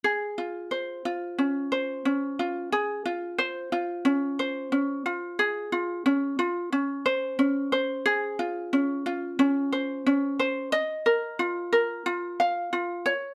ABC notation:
X:1
M:4/4
L:1/8
Q:1/4=90
K:Db
V:1 name="Ukulele"
A F c F D c D F | A F c F D c D F | A F D F D c D c | A F D F D c D c |
e B F B F f F d |]